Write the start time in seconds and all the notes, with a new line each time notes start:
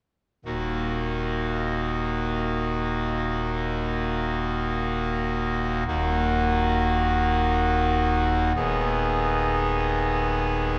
0.45 D#1 D#2 A#3 D#4 F#4
5.87 D#1 D#2 A#3 D#4 F#4
8.55 D#1 D#2 B3 D#4 G#4